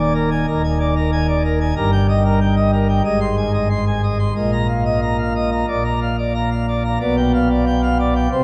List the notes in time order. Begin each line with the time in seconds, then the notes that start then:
Already playing: D#1 D#2
0.00 D5
0.15 A#4
0.31 G#5
0.47 D#1 D#2 A#4
0.63 G#5
0.80 D5
0.96 A#4
1.12 G#5
1.28 D5
1.45 A#4
1.60 G#5
1.76 G1 G2 A#4
1.92 G5
2.09 D#5
2.25 A#4
2.41 G5
2.56 D#5
2.73 A#4
2.89 G5
3.05 G#1 G#2 D#5
3.21 C6
3.37 G#5
3.54 D#5
3.70 C6
3.87 G#5
4.03 D#5
4.19 C6
4.36 A#1 A#2 D#5
4.52 A#5
4.69 F5
4.85 D#5
5.02 A#5
5.19 F5
5.35 D#5
5.52 A#5
5.68 A#1 A#2 D5
5.85 A#5
6.02 F5
6.18 D5
6.35 A#5
6.51 F5
6.68 D5
6.84 A#5
7.01 B1 B2 D5
7.17 G5
7.34 F5
7.50 D5
7.66 G5
7.83 F5
7.99 D5
8.15 G5
8.32 C2 C3 C5